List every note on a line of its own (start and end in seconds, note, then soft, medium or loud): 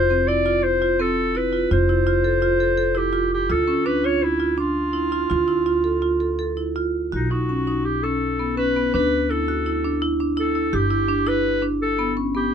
0.00 1.68 F1 medium
0.00 0.30 C5 medium
0.10 0.19 C4 medium
0.28 0.38 E4 medium
0.28 0.65 D5 medium
0.46 0.64 F4 medium
0.64 1.02 C5 medium
0.82 0.91 F4 medium
0.99 1.18 C4 medium
0.99 1.39 A4 medium
1.35 1.44 E4 medium
1.35 1.72 B4 medium
1.53 1.62 F4 medium
1.71 3.46 F1 medium
1.71 1.80 F4 medium
1.71 2.99 C5 medium
1.89 1.98 E4 medium
2.07 2.16 F4 medium
2.24 2.34 A4 medium
2.42 2.52 F4 medium
2.60 2.69 A4 medium
2.78 2.87 A4 medium
2.95 3.04 E4 medium
2.95 3.33 G4 medium
3.13 3.31 F4 medium
3.34 3.53 G4 medium
3.50 5.26 D2 medium
3.50 3.59 F4 medium
3.50 3.88 A4 medium
3.68 3.77 C#4 medium
3.86 3.95 D4 medium
3.86 4.07 B4 medium
4.04 4.23 F4 medium
4.04 4.25 C#5 medium
4.23 4.59 E4 medium
4.40 4.49 F4 medium
4.58 4.76 D4 medium
4.58 6.73 F4 medium
4.93 5.03 E4 medium
5.12 5.21 F4 medium
5.30 7.10 D2 medium
5.30 5.39 F4 medium
5.48 5.57 E4 medium
5.66 5.75 F4 medium
5.84 5.93 A4 medium
6.02 6.12 F4 medium
6.20 6.30 A4 medium
6.39 6.48 A4 medium
6.57 6.67 E4 medium
6.76 6.95 F4 medium
7.12 8.90 B1 medium
7.12 7.32 D#4 medium
7.12 7.22 F#4 medium
7.31 7.40 D#4 medium
7.31 7.87 F#4 medium
7.49 7.59 C#4 medium
7.67 7.86 D#4 medium
7.85 8.05 G4 medium
8.03 8.22 C#4 medium
8.03 8.57 A4 medium
8.39 8.49 B3 medium
8.57 8.67 C#4 medium
8.57 8.91 B4 medium
8.76 8.85 B3 medium
8.94 10.70 D2 medium
8.94 9.12 D4 medium
8.94 9.32 B4 medium
9.30 9.40 E4 medium
9.30 10.02 A4 medium
9.48 9.57 F#4 medium
9.66 9.75 E4 medium
9.85 9.93 D4 medium
10.02 10.11 E4 medium
10.20 10.29 D4 medium
10.37 10.46 E4 medium
10.37 10.76 A4 medium
10.55 10.64 E4 medium
10.73 12.51 G1 medium
10.73 10.82 G4 medium
10.73 11.29 G4 medium
10.91 11.00 E4 medium
11.09 11.18 D4 medium
11.27 11.45 E4 medium
11.27 11.64 B4 medium
11.62 11.81 D4 medium
11.82 12.16 A4 medium
11.99 12.08 B3 medium
12.17 12.26 C#4 medium
12.35 12.44 B3 medium
12.35 12.54 G4 medium